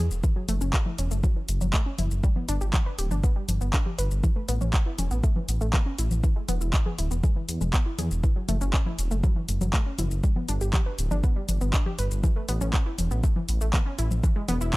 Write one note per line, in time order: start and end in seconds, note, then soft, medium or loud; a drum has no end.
0.11 0.21 E1 medium
0.11 shaker medium
0.24 0.29 E3 medium
0.24 kick loud
0.24 shaker medium
0.36 0.45 F#3 medium
0.49 0.59 F#1 medium
0.49 0.54 A3 loud
0.49 open hi-hat loud
0.49 low conga medium
0.49 shaker medium
0.61 0.71 F#1 medium
0.61 0.70 C#4 medium
0.61 shaker medium
0.74 kick loud
0.74 clap loud
0.74 shaker medium
0.86 0.91 E4 medium
0.86 low conga medium
0.98 1.09 E1 medium
0.98 1.07 C#4 medium
0.98 open hi-hat loud
0.98 shaker medium
1.11 1.21 F#1 medium
1.11 1.16 A3 medium
1.11 shaker medium
1.24 1.32 F#3 medium
1.24 kick loud
1.24 low conga medium
1.24 shaker medium
1.36 1.45 E3 medium
1.49 1.59 F#1 loud
1.49 open hi-hat loud
1.49 shaker medium
1.61 1.71 F#1 medium
1.61 1.66 F#3 medium
1.61 low conga medium
1.61 shaker medium
1.74 1.79 A3 medium
1.74 kick loud
1.74 clap loud
1.74 shaker medium
1.86 1.91 C#4 medium
1.99 2.09 F#1 medium
1.99 2.07 E4 medium
1.99 open hi-hat loud
1.99 low conga medium
1.99 shaker medium
2.11 2.21 F#1 medium
2.11 shaker medium
2.24 2.29 G3 medium
2.24 kick loud
2.24 shaker medium
2.36 2.45 B3 medium
2.36 low conga medium
2.49 2.59 G1 medium
2.49 2.54 D4 loud
2.49 open hi-hat loud
2.49 shaker medium
2.61 2.71 G1 medium
2.61 2.70 G4 medium
2.61 shaker medium
2.74 kick loud
2.74 clap loud
2.74 low conga medium
2.74 shaker medium
2.86 2.91 B4 medium
2.98 3.09 D1 loud
2.98 3.07 G4 medium
2.98 open hi-hat loud
2.98 shaker medium
3.11 3.21 G1 medium
3.11 3.16 D4 medium
3.11 low conga medium
3.11 shaker medium
3.24 3.32 B3 medium
3.24 kick loud
3.24 shaker medium
3.36 3.45 G3 medium
3.49 3.59 G1 medium
3.49 open hi-hat loud
3.49 low conga medium
3.49 shaker medium
3.61 3.71 G1 medium
3.61 3.66 B3 medium
3.61 shaker medium
3.73 3.79 D4 medium
3.73 kick loud
3.73 clap loud
3.73 shaker medium
3.86 3.91 G4 medium
3.86 low conga medium
3.98 4.09 G1 medium
3.98 4.07 B4 medium
3.98 open hi-hat loud
3.98 shaker medium
4.11 4.21 G1 medium
4.11 shaker medium
4.24 4.29 E3 medium
4.24 kick loud
4.24 low conga medium
4.24 shaker medium
4.36 4.45 A3 medium
4.48 4.59 A1 medium
4.48 4.54 B3 loud
4.48 open hi-hat loud
4.48 shaker medium
4.61 4.71 A1 medium
4.61 4.70 C#4 medium
4.61 low conga medium
4.61 shaker medium
4.74 kick loud
4.74 clap loud
4.74 shaker medium
4.86 4.91 E4 medium
4.99 5.09 E1 medium
4.99 5.07 C#4 medium
4.99 open hi-hat loud
4.99 low conga medium
4.99 shaker medium
5.11 5.21 A1 medium
5.11 5.16 B3 medium
5.11 shaker medium
5.24 5.32 A3 medium
5.24 kick loud
5.24 shaker medium
5.36 5.45 E3 medium
5.36 low conga medium
5.49 5.59 A1 medium
5.49 open hi-hat loud
5.49 shaker medium
5.61 5.71 A1 medium
5.61 5.66 A3 medium
5.61 shaker medium
5.74 5.79 B3 medium
5.74 kick loud
5.74 clap loud
5.74 low conga medium
5.74 shaker medium
5.86 5.91 C#4 medium
5.99 6.09 A1 loud
5.99 6.07 E4 medium
5.99 open hi-hat loud
5.99 shaker medium
6.11 6.21 A1 medium
6.11 low conga medium
6.11 shaker medium
6.24 6.29 E3 medium
6.24 kick loud
6.24 shaker medium
6.36 6.45 G#3 medium
6.48 6.59 E1 medium
6.48 6.54 B3 loud
6.48 open hi-hat loud
6.48 low conga medium
6.48 shaker medium
6.61 6.71 E1 medium
6.61 6.70 E4 medium
6.61 shaker medium
6.74 kick loud
6.74 clap loud
6.74 shaker medium
6.86 6.91 G#4 medium
6.86 low conga medium
6.99 7.09 D1 medium
6.99 7.07 E4 medium
6.99 open hi-hat loud
6.99 shaker medium
7.11 7.21 E1 medium
7.11 7.16 B3 medium
7.11 shaker medium
7.24 7.32 G#3 medium
7.24 kick loud
7.24 low conga medium
7.24 shaker medium
7.36 7.45 E3 medium
7.49 7.59 E2 medium
7.49 open hi-hat loud
7.49 shaker medium
7.61 7.71 E1 medium
7.61 7.66 G#3 medium
7.61 low conga medium
7.61 shaker medium
7.74 7.79 B3 medium
7.74 kick loud
7.74 clap loud
7.74 shaker medium
7.86 7.91 E4 medium
7.99 8.09 E2 medium
7.99 8.07 G#4 medium
7.99 open hi-hat loud
7.99 low conga medium
7.99 shaker medium
8.11 8.21 E1 medium
8.11 shaker medium
8.24 8.29 E3 medium
8.24 kick loud
8.24 shaker medium
8.36 8.45 F#3 medium
8.49 8.59 F#1 medium
8.49 8.54 A3 loud
8.49 open hi-hat loud
8.49 low conga medium
8.49 shaker medium
8.61 8.71 F#1 medium
8.61 8.70 C#4 medium
8.61 shaker medium
8.74 8.82 C#4 medium
8.74 kick loud
8.74 clap loud
8.74 shaker medium
8.86 8.91 E4 medium
8.86 low conga medium
8.99 9.09 E1 medium
8.99 open hi-hat loud
8.99 shaker medium
9.11 9.21 F#1 medium
9.11 9.16 A3 medium
9.11 shaker medium
9.24 9.32 F#3 medium
9.24 kick loud
9.24 low conga medium
9.24 shaker medium
9.36 9.45 E3 medium
9.48 9.59 F#1 medium
9.48 open hi-hat loud
9.48 shaker medium
9.61 9.71 F#1 medium
9.61 9.66 F#3 medium
9.61 low conga medium
9.61 shaker medium
9.74 9.79 A3 medium
9.74 kick loud
9.74 clap loud
9.74 shaker medium
9.86 9.91 C#4 medium
9.99 10.09 F#1 loud
9.99 10.07 E4 medium
9.99 open hi-hat loud
9.99 low conga medium
9.99 shaker medium
10.11 10.21 F#1 medium
10.11 shaker medium
10.24 10.29 G3 medium
10.24 kick loud
10.24 shaker medium
10.36 10.45 B3 medium
10.36 low conga medium
10.49 10.59 G1 medium
10.49 10.54 D4 loud
10.49 open hi-hat loud
10.49 shaker medium
10.61 10.71 G1 medium
10.61 10.70 G4 medium
10.61 shaker medium
10.74 10.82 G4 medium
10.74 kick loud
10.74 clap loud
10.74 low conga medium
10.74 shaker medium
10.86 10.91 B4 medium
10.99 11.09 D1 medium
10.99 open hi-hat loud
10.99 shaker medium
11.11 11.21 G1 medium
11.11 11.16 D4 medium
11.11 low conga medium
11.11 shaker medium
11.24 11.32 B3 medium
11.24 kick loud
11.24 shaker medium
11.36 11.45 G3 medium
11.49 11.59 G1 medium
11.49 open hi-hat loud
11.49 low conga medium
11.49 shaker medium
11.61 11.71 G1 medium
11.61 11.66 B3 medium
11.61 shaker medium
11.74 11.79 D4 medium
11.74 kick loud
11.74 clap loud
11.74 shaker medium
11.86 11.91 G4 medium
11.86 low conga medium
11.99 12.09 G1 loud
11.99 12.07 B4 medium
11.99 open hi-hat loud
11.99 shaker medium
12.11 12.21 G1 medium
12.11 shaker medium
12.24 12.29 E3 medium
12.24 kick loud
12.24 low conga loud
12.24 shaker medium
12.36 12.45 A3 medium
12.49 12.59 A1 loud
12.49 12.54 B3 loud
12.49 open hi-hat loud
12.49 shaker medium
12.61 12.71 A1 medium
12.61 12.70 C#4 medium
12.61 low conga medium
12.61 shaker medium
12.74 12.82 C#4 medium
12.74 kick loud
12.74 clap loud
12.74 shaker medium
12.86 12.91 E4 medium
12.99 13.09 E1 loud
12.99 open hi-hat loud
12.99 low conga medium
12.99 shaker medium
13.11 13.21 A1 medium
13.11 13.16 B3 medium
13.11 shaker medium
13.24 13.32 A3 medium
13.24 kick loud
13.24 shaker medium
13.36 13.45 E3 medium
13.36 low conga medium
13.49 13.59 A1 medium
13.49 open hi-hat loud
13.49 shaker medium
13.61 13.71 A1 medium
13.61 13.66 A3 medium
13.61 shaker medium
13.74 13.79 B3 medium
13.74 kick loud
13.74 clap loud
13.74 low conga loud
13.74 shaker medium
13.86 13.91 C#4 medium
13.98 14.09 A1 loud
13.98 14.07 E4 medium
13.98 open hi-hat medium
13.98 shaker medium
14.11 14.21 A1 medium
14.11 low conga loud
14.11 shaker medium
14.24 14.29 E3 medium
14.24 kick loud
14.24 shaker medium
14.36 14.45 G#3 medium
14.48 14.59 E1 loud
14.48 14.54 B3 loud
14.48 open hi-hat loud
14.48 low conga loud
14.48 shaker medium
14.61 14.71 E1 medium
14.61 14.70 E4 medium
14.61 shaker medium
14.74 14.77 E4 medium
14.74 kick loud
14.74 clap loud
14.74 shaker medium